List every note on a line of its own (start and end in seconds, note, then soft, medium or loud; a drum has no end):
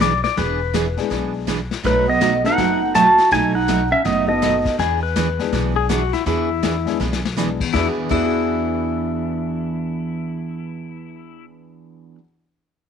0.00 0.23 B1 medium
0.00 0.11 E3 medium
0.00 0.12 B3 medium
0.00 0.12 D4 medium
0.00 0.12 G#4 medium
0.00 0.23 D5 medium
0.00 kick soft
0.00 snare medium
0.00 hi-hat pedal medium
0.24 0.37 D5 medium
0.24 snare soft
0.37 0.96 E1 loud
0.37 0.59 E3 medium
0.37 0.59 B3 medium
0.37 0.59 D4 medium
0.37 0.59 G#4 medium
0.37 1.09 B4 medium
0.37 brush sweep soft
0.37 kick soft
0.37 snare soft
0.74 0.85 E3 medium
0.74 0.85 B3 medium
0.74 0.86 D4 medium
0.74 0.86 G#4 medium
0.74 kick soft
0.74 snare medium
0.74 hi-hat pedal medium
0.97 1.45 G#3 medium
0.97 1.45 B3 medium
0.97 1.45 D4 medium
0.97 1.45 E4 medium
0.97 1.45 G#4 medium
0.97 snare soft
1.10 1.70 B1 medium
1.10 1.32 E3 soft
1.10 1.32 B3 medium
1.10 1.32 D4 medium
1.10 1.32 G#4 medium
1.10 brush sweep soft
1.10 kick soft
1.10 snare soft
1.47 1.59 E3 medium
1.47 1.59 B3 medium
1.47 1.59 D4 medium
1.47 1.59 G#4 medium
1.47 kick soft
1.47 snare medium
1.47 hi-hat pedal medium
1.71 snare soft
1.84 2.43 B1 loud
1.84 2.05 B2 medium
1.84 2.06 F#3 medium
1.84 2.06 A3 medium
1.84 2.06 D#4 medium
1.84 2.06 F#4 medium
1.84 2.07 B4 medium
1.84 brush sweep soft
1.84 kick soft
1.84 snare soft
2.07 2.42 B3 medium
2.07 2.46 D#5 medium
2.21 2.32 B2 medium
2.21 2.32 F#3 medium
2.21 2.33 A3 medium
2.21 2.33 D#4 medium
2.21 2.33 F#4 medium
2.21 kick soft
2.21 snare medium
2.21 hi-hat pedal medium
2.44 2.92 A3 medium
2.44 2.92 B3 medium
2.44 2.92 D#4 medium
2.44 2.91 D#4 medium
2.44 2.92 F#4 medium
2.44 2.92 A4 medium
2.44 2.97 F#5 loud
2.44 snare soft
2.58 3.17 F#1 medium
2.58 2.79 B2 soft
2.58 2.80 F#3 soft
2.58 2.79 A3 medium
2.58 2.80 D#4 soft
2.58 2.80 F#4 medium
2.58 brush sweep medium
2.58 kick soft
2.58 snare medium
2.95 3.06 B2 medium
2.95 3.06 F#3 medium
2.95 3.06 A3 medium
2.95 3.06 D#4 medium
2.95 3.29 F#4 loud
2.95 3.07 F#4 medium
2.95 3.32 A5 loud
2.95 kick soft
2.95 snare medium
2.95 hi-hat pedal medium
3.18 snare soft
3.31 3.91 B1 loud
3.31 3.53 B2 medium
3.31 3.53 F#3 medium
3.31 3.53 A3 medium
3.31 3.53 D#4 medium
3.31 3.53 F#4 medium
3.31 3.55 G#5 loud
3.31 brush sweep soft
3.31 kick soft
3.31 snare soft
3.54 3.89 D#4 medium
3.54 3.89 F#5 loud
3.68 3.79 B2 medium
3.68 3.80 F#3 medium
3.68 3.80 A3 medium
3.68 3.80 D#4 medium
3.68 3.80 F#4 medium
3.68 kick soft
3.68 snare medium
3.68 hi-hat pedal medium
3.91 4.06 C#4 medium
3.91 4.05 E5 medium
4.04 4.64 F#1 medium
4.04 4.26 B2 medium
4.04 4.27 F#3 medium
4.04 4.27 A3 medium
4.04 4.27 B3 medium
4.04 4.27 D#4 medium
4.04 4.27 F#4 medium
4.04 4.27 D#5 medium
4.04 brush sweep medium
4.04 kick soft
4.04 snare soft
4.28 4.76 A3 medium
4.28 4.75 B3 medium
4.28 4.76 B3 medium
4.28 4.76 D#4 medium
4.28 4.76 F#4 medium
4.28 4.76 A4 medium
4.28 4.75 D#5 medium
4.42 4.53 B2 medium
4.42 4.53 F#3 medium
4.42 4.54 A3 medium
4.42 4.54 D#4 medium
4.42 4.54 F#4 medium
4.42 kick soft
4.42 snare medium
4.42 hi-hat pedal medium
4.65 kick medium
4.65 snare soft
4.79 5.38 E2 medium
4.79 5.00 E3 medium
4.79 5.00 B3 medium
4.79 5.01 D4 medium
4.79 5.02 G#4 medium
4.79 5.01 G#4 medium
4.79 brush sweep soft
4.79 kick soft
4.79 snare soft
5.03 5.74 B4 medium
5.16 5.27 E3 medium
5.16 5.27 B3 medium
5.16 5.27 D4 medium
5.16 5.28 G#4 medium
5.16 kick soft
5.16 snare medium
5.16 hi-hat pedal medium
5.39 5.87 G#3 medium
5.39 5.87 B3 medium
5.39 5.87 D4 medium
5.39 5.87 E4 medium
5.39 5.87 G#4 medium
5.39 snare soft
5.53 6.12 B1 medium
5.53 5.74 E3 medium
5.53 5.74 B3 medium
5.53 5.74 D4 medium
5.53 5.74 G#4 medium
5.53 brush sweep soft
5.53 kick soft
5.53 snare medium
5.76 5.89 G#4 medium
5.89 6.01 E3 medium
5.89 6.01 B3 medium
5.89 6.01 D4 medium
5.89 6.12 F#4 medium
5.89 6.01 G#4 medium
5.89 kick soft
5.89 snare medium
5.89 hi-hat pedal medium
6.13 6.26 E4 medium
6.13 snare soft
6.26 6.85 E2 medium
6.26 6.48 E3 medium
6.26 6.48 B3 medium
6.26 6.48 D4 medium
6.26 6.98 E4 loud
6.26 6.48 G#4 medium
6.26 brush sweep soft
6.26 kick soft
6.26 snare soft
6.63 6.74 E3 medium
6.63 6.74 B3 medium
6.63 6.74 D4 medium
6.63 6.75 G#4 medium
6.63 kick soft
6.63 snare medium
6.63 hi-hat pedal medium
6.86 6.98 G#3 medium
6.86 6.98 B3 medium
6.86 6.98 D4 medium
6.86 6.98 E4 medium
6.86 6.99 G#4 medium
6.86 snare soft
7.00 7.59 B1 medium
7.00 7.21 E3 medium
7.00 7.21 B3 medium
7.00 7.22 D4 medium
7.00 7.22 G#4 medium
7.00 snare medium
7.13 snare medium
7.25 snare medium
7.37 7.48 E3 medium
7.37 7.58 G#3 medium
7.37 7.48 B3 medium
7.37 7.58 B3 medium
7.37 7.58 D4 medium
7.37 7.48 D4 medium
7.37 7.58 E4 medium
7.37 7.58 G#4 medium
7.37 7.49 G#4 medium
7.37 snare medium
7.37 hi-hat pedal medium
7.60 7.82 E2 medium
7.60 kick medium
7.60 crash medium
7.68 7.85 E3 medium
7.73 7.87 E2 loud
7.73 8.09 E3 medium
7.73 8.10 B3 medium
7.73 7.88 D4 medium
7.73 8.11 D4 medium
7.73 7.87 E4 loud
7.73 8.12 G#4 medium
7.73 kick medium
7.73 snare medium
7.80 7.91 F#4 medium
7.87 7.94 G#4 medium
7.98 12.12 E2 medium
8.04 12.15 E3 medium
8.09 12.15 E2 loud
8.09 12.18 E3 medium
8.09 12.18 B3 medium
8.09 12.18 D4 medium
8.09 12.19 D4 medium
8.09 11.45 E4 medium
8.09 12.19 G#4 medium
8.09 kick medium
8.09 crash medium
8.17 12.21 F#4 medium
8.23 12.24 G#4 medium